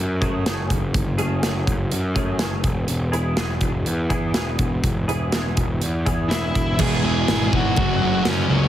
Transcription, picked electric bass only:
0.00 0.43 F#2 medium
0.46 0.69 F#1 medium
0.70 0.93 F#1 medium
0.95 1.41 F#1 medium
1.44 1.66 F#1 medium
1.67 1.90 F#1 medium
1.92 2.38 F#2 medium
2.40 2.63 F#1 medium
2.64 2.87 E1 medium
2.89 3.35 E1 medium
3.37 3.61 E1 medium
3.62 3.85 E1 medium
3.86 4.33 E2 medium
4.34 4.58 E1 medium
4.59 4.82 E1 medium
4.84 5.30 E1 medium
5.33 5.56 E1 medium
5.57 5.80 E1 medium
5.82 6.28 E2 medium
6.31 6.54 E1 medium
6.55 6.78 E1 medium
6.80 6.99 E1 medium
7.03 7.23 E1 medium
7.29 7.67 G#1 medium
7.78 7.97 F#1 medium
8.02 8.21 F#1 medium
8.26 8.45 F#2 medium
8.49 8.68 C#2 medium

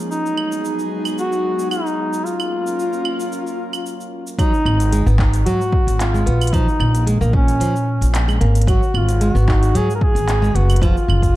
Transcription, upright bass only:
4.65 5.02 G#1 loud
5.06 5.42 G#1 loud
5.87 6.22 G#1 medium
6.26 6.62 A#1 loud
6.80 7.16 A#1 loud
7.21 7.56 A#1 loud
7.60 7.96 A#2 medium
8.01 8.36 A#1 loud
8.41 8.77 G#1 loud
8.94 9.30 G#1 loud
9.35 9.70 G#1 loud
9.75 10.11 G#2 medium
10.15 10.50 G#1 loud
10.55 10.91 F#1 medium
11.08 11.36 F#1 loud

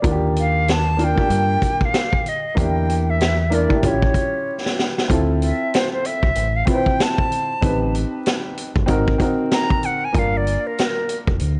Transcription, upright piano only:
0.00 0.85 A#3 medium
0.00 0.85 D4 medium
0.00 0.86 F4 medium
0.00 0.20 D5 medium
0.05 0.12 F#4 medium
0.11 0.90 G4 medium
0.97 1.13 A#3 medium
0.97 1.14 D4 medium
0.97 1.15 F4 medium
0.97 1.15 A#4 medium
1.15 2.20 A#3 medium
1.15 2.21 D4 medium
1.15 2.21 F4 medium
1.15 2.22 G4 medium
2.55 3.38 A#3 medium
2.55 3.38 D4 medium
2.55 3.39 E4 medium
2.55 3.39 G4 medium
3.50 3.66 A#3 medium
3.50 3.67 D4 medium
3.50 3.67 E4 medium
3.50 3.68 A#4 medium
3.68 3.82 A#3 medium
3.68 3.83 D4 medium
3.68 3.82 E4 medium
3.68 3.84 G4 medium
3.82 4.90 C#4 medium
3.82 4.91 E4 medium
3.82 4.91 F4 medium
3.82 4.92 G4 medium
5.08 6.16 C4 medium
5.08 6.17 E4 medium
5.08 6.18 F4 medium
5.08 6.18 A4 medium
6.65 7.48 C4 medium
6.65 7.49 E4 medium
6.65 7.49 F4 medium
6.65 6.76 B4 medium
6.75 7.53 C5 medium
7.61 8.69 C4 medium
7.61 8.69 D#4 medium
7.61 8.70 G4 medium
7.61 8.71 B4 medium
8.86 9.14 C4 medium
8.86 9.15 D#4 medium
8.86 9.15 F#4 medium
8.86 9.16 A#4 loud
9.18 10.01 C4 medium
9.18 10.02 D#4 medium
9.18 10.02 F#4 medium
9.18 10.02 A#4 medium
10.13 11.21 A#3 medium
10.13 11.22 D4 medium
10.13 11.22 F4 medium
10.13 11.23 A#4 medium

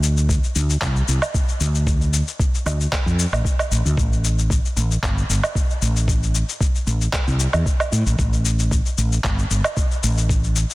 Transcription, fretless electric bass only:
0.00 0.37 D2 medium
0.56 0.75 D2 medium
0.82 1.01 C2 medium
1.08 1.18 C2 medium
1.61 2.21 D2 medium
2.66 2.85 D2 medium
3.06 3.25 F2 medium
3.32 3.41 A1 medium
3.71 3.81 A1 medium
3.85 3.94 D2 medium
3.98 4.58 A1 medium
4.77 4.96 A1 medium
5.03 5.22 G1 medium
5.29 5.39 G1 medium
5.82 6.42 A1 loud
6.87 7.06 A1 medium
7.27 7.46 C2 medium
7.54 7.63 E2 medium
7.92 8.02 A2 loud
8.06 8.15 A1 loud
8.19 8.79 A1 medium
8.98 9.17 A1 medium
9.24 9.44 G1 medium
9.51 9.60 G1 medium
10.04 10.64 A1 loud

